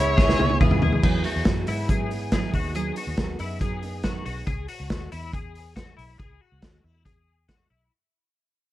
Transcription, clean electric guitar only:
0, 0, Header, 1, 2, 480
1, 0, Start_track
1, 0, Key_signature, 4, "minor"
1, 0, Tempo, 429492
1, 1157, Time_signature, 4, 2, 24, 8
1, 9756, End_track
2, 0, Start_track
2, 0, Title_t, "Clean electric guitar"
2, 0, Program_c, 0, 27
2, 0, Note_on_c, 0, 64, 80
2, 185, Note_off_c, 0, 64, 0
2, 190, Note_on_c, 0, 68, 82
2, 644, Note_off_c, 0, 68, 0
2, 679, Note_on_c, 0, 68, 88
2, 908, Note_off_c, 0, 68, 0
2, 921, Note_on_c, 0, 68, 83
2, 1143, Note_off_c, 0, 68, 0
2, 1156, Note_on_c, 0, 68, 87
2, 1394, Note_off_c, 0, 68, 0
2, 1398, Note_on_c, 0, 66, 70
2, 1846, Note_off_c, 0, 66, 0
2, 1879, Note_on_c, 0, 64, 74
2, 2116, Note_off_c, 0, 64, 0
2, 2126, Note_on_c, 0, 68, 72
2, 2570, Note_off_c, 0, 68, 0
2, 2603, Note_on_c, 0, 68, 75
2, 2837, Note_off_c, 0, 68, 0
2, 2846, Note_on_c, 0, 66, 73
2, 3076, Note_off_c, 0, 66, 0
2, 3080, Note_on_c, 0, 68, 97
2, 3315, Note_off_c, 0, 68, 0
2, 3323, Note_on_c, 0, 66, 71
2, 3769, Note_off_c, 0, 66, 0
2, 3800, Note_on_c, 0, 64, 74
2, 4031, Note_off_c, 0, 64, 0
2, 4035, Note_on_c, 0, 68, 74
2, 4485, Note_off_c, 0, 68, 0
2, 4518, Note_on_c, 0, 66, 72
2, 4742, Note_off_c, 0, 66, 0
2, 4756, Note_on_c, 0, 66, 74
2, 4989, Note_off_c, 0, 66, 0
2, 4993, Note_on_c, 0, 68, 93
2, 5233, Note_off_c, 0, 68, 0
2, 5238, Note_on_c, 0, 66, 71
2, 5687, Note_off_c, 0, 66, 0
2, 5723, Note_on_c, 0, 64, 70
2, 5959, Note_off_c, 0, 64, 0
2, 5964, Note_on_c, 0, 68, 74
2, 6411, Note_off_c, 0, 68, 0
2, 6437, Note_on_c, 0, 66, 76
2, 6665, Note_off_c, 0, 66, 0
2, 6669, Note_on_c, 0, 64, 67
2, 6913, Note_off_c, 0, 64, 0
2, 6919, Note_on_c, 0, 68, 84
2, 7164, Note_off_c, 0, 68, 0
2, 7164, Note_on_c, 0, 66, 67
2, 7642, Note_off_c, 0, 66, 0
2, 7642, Note_on_c, 0, 64, 64
2, 7877, Note_off_c, 0, 64, 0
2, 7882, Note_on_c, 0, 68, 70
2, 8334, Note_off_c, 0, 68, 0
2, 8365, Note_on_c, 0, 66, 73
2, 8603, Note_off_c, 0, 66, 0
2, 8608, Note_on_c, 0, 64, 64
2, 8846, Note_off_c, 0, 64, 0
2, 9756, End_track
0, 0, End_of_file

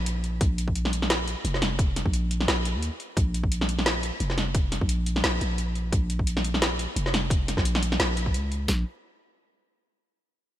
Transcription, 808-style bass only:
0, 0, Header, 1, 2, 480
1, 0, Start_track
1, 0, Key_signature, -5, "minor"
1, 0, Tempo, 344828
1, 568, Time_signature, 4, 2, 24, 8
1, 14748, End_track
2, 0, Start_track
2, 0, Title_t, "808-style bass"
2, 0, Program_c, 0, 38
2, 0, Note_on_c, 0, 34, 89
2, 556, Note_off_c, 0, 34, 0
2, 569, Note_on_c, 0, 34, 105
2, 1885, Note_off_c, 0, 34, 0
2, 2011, Note_on_c, 0, 29, 87
2, 2846, Note_off_c, 0, 29, 0
2, 2862, Note_on_c, 0, 34, 104
2, 3435, Note_off_c, 0, 34, 0
2, 3450, Note_on_c, 0, 34, 104
2, 3825, Note_on_c, 0, 39, 93
2, 3846, Note_off_c, 0, 34, 0
2, 4042, Note_off_c, 0, 39, 0
2, 4411, Note_on_c, 0, 34, 108
2, 5725, Note_off_c, 0, 34, 0
2, 5850, Note_on_c, 0, 29, 84
2, 6685, Note_off_c, 0, 29, 0
2, 6702, Note_on_c, 0, 34, 99
2, 7275, Note_off_c, 0, 34, 0
2, 7292, Note_on_c, 0, 34, 98
2, 7513, Note_off_c, 0, 34, 0
2, 7533, Note_on_c, 0, 34, 87
2, 8237, Note_off_c, 0, 34, 0
2, 8248, Note_on_c, 0, 34, 104
2, 9564, Note_off_c, 0, 34, 0
2, 9690, Note_on_c, 0, 29, 83
2, 10525, Note_off_c, 0, 29, 0
2, 10539, Note_on_c, 0, 34, 97
2, 11113, Note_off_c, 0, 34, 0
2, 11127, Note_on_c, 0, 34, 104
2, 11607, Note_on_c, 0, 37, 98
2, 11628, Note_off_c, 0, 34, 0
2, 12074, Note_off_c, 0, 37, 0
2, 12093, Note_on_c, 0, 34, 103
2, 12314, Note_off_c, 0, 34, 0
2, 14748, End_track
0, 0, End_of_file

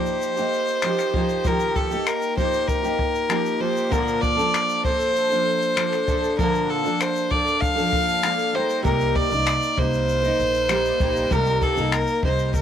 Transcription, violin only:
0, 0, Header, 1, 2, 480
1, 0, Start_track
1, 0, Key_signature, -2, "major"
1, 0, Tempo, 616016
1, 1132, Time_signature, 4, 2, 24, 8
1, 9831, End_track
2, 0, Start_track
2, 0, Title_t, "Violin"
2, 0, Program_c, 0, 40
2, 0, Note_on_c, 0, 72, 81
2, 1146, Note_on_c, 0, 70, 83
2, 1158, Note_off_c, 0, 72, 0
2, 1373, Note_on_c, 0, 69, 70
2, 1385, Note_off_c, 0, 70, 0
2, 1611, Note_on_c, 0, 70, 74
2, 1623, Note_off_c, 0, 69, 0
2, 1849, Note_off_c, 0, 70, 0
2, 1853, Note_on_c, 0, 72, 76
2, 2088, Note_on_c, 0, 70, 74
2, 2100, Note_off_c, 0, 72, 0
2, 2808, Note_on_c, 0, 72, 76
2, 2819, Note_off_c, 0, 70, 0
2, 3052, Note_on_c, 0, 70, 78
2, 3064, Note_off_c, 0, 72, 0
2, 3286, Note_on_c, 0, 74, 86
2, 3298, Note_off_c, 0, 70, 0
2, 3770, Note_off_c, 0, 74, 0
2, 3774, Note_on_c, 0, 72, 100
2, 4943, Note_off_c, 0, 72, 0
2, 4978, Note_on_c, 0, 70, 85
2, 5221, Note_on_c, 0, 69, 77
2, 5233, Note_off_c, 0, 70, 0
2, 5463, Note_on_c, 0, 72, 82
2, 5475, Note_off_c, 0, 69, 0
2, 5698, Note_on_c, 0, 74, 78
2, 5709, Note_off_c, 0, 72, 0
2, 5930, Note_on_c, 0, 77, 94
2, 5942, Note_off_c, 0, 74, 0
2, 6664, Note_on_c, 0, 72, 83
2, 6675, Note_off_c, 0, 77, 0
2, 6891, Note_off_c, 0, 72, 0
2, 6895, Note_on_c, 0, 70, 85
2, 7138, Note_on_c, 0, 74, 88
2, 7149, Note_off_c, 0, 70, 0
2, 7625, Note_on_c, 0, 72, 95
2, 7637, Note_off_c, 0, 74, 0
2, 8823, Note_on_c, 0, 70, 89
2, 8835, Note_off_c, 0, 72, 0
2, 9059, Note_on_c, 0, 69, 77
2, 9070, Note_off_c, 0, 70, 0
2, 9304, Note_on_c, 0, 70, 78
2, 9316, Note_off_c, 0, 69, 0
2, 9536, Note_off_c, 0, 70, 0
2, 9544, Note_on_c, 0, 72, 73
2, 9760, Note_off_c, 0, 72, 0
2, 9784, Note_on_c, 0, 70, 81
2, 9831, Note_off_c, 0, 70, 0
2, 9831, End_track
0, 0, End_of_file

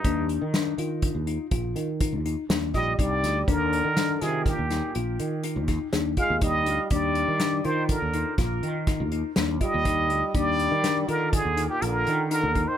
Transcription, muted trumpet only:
0, 0, Header, 1, 2, 480
1, 0, Start_track
1, 0, Key_signature, -3, "major"
1, 0, Tempo, 490597
1, 45, Time_signature, 7, 2, 24, 8
1, 12500, End_track
2, 0, Start_track
2, 0, Title_t, "Muted trumpet"
2, 0, Program_c, 0, 59
2, 0, Note_on_c, 0, 63, 75
2, 290, Note_off_c, 0, 63, 0
2, 2682, Note_on_c, 0, 75, 91
2, 2920, Note_on_c, 0, 74, 93
2, 2935, Note_off_c, 0, 75, 0
2, 3421, Note_on_c, 0, 70, 85
2, 3435, Note_off_c, 0, 74, 0
2, 4127, Note_on_c, 0, 68, 75
2, 4142, Note_off_c, 0, 70, 0
2, 4375, Note_on_c, 0, 67, 68
2, 4390, Note_off_c, 0, 68, 0
2, 4850, Note_off_c, 0, 67, 0
2, 6047, Note_on_c, 0, 77, 93
2, 6269, Note_off_c, 0, 77, 0
2, 6293, Note_on_c, 0, 75, 97
2, 6736, Note_off_c, 0, 75, 0
2, 6765, Note_on_c, 0, 74, 87
2, 7484, Note_on_c, 0, 72, 78
2, 7499, Note_off_c, 0, 74, 0
2, 7720, Note_off_c, 0, 72, 0
2, 7726, Note_on_c, 0, 70, 72
2, 8172, Note_off_c, 0, 70, 0
2, 9410, Note_on_c, 0, 75, 102
2, 10128, Note_on_c, 0, 74, 104
2, 10143, Note_off_c, 0, 75, 0
2, 10848, Note_on_c, 0, 70, 87
2, 10863, Note_off_c, 0, 74, 0
2, 11091, Note_on_c, 0, 68, 91
2, 11106, Note_off_c, 0, 70, 0
2, 11437, Note_off_c, 0, 68, 0
2, 11443, Note_on_c, 0, 67, 86
2, 11563, Note_on_c, 0, 70, 89
2, 11577, Note_off_c, 0, 67, 0
2, 12037, Note_off_c, 0, 70, 0
2, 12043, Note_on_c, 0, 70, 87
2, 12407, Note_on_c, 0, 72, 82
2, 12422, Note_off_c, 0, 70, 0
2, 12500, Note_off_c, 0, 72, 0
2, 12500, End_track
0, 0, End_of_file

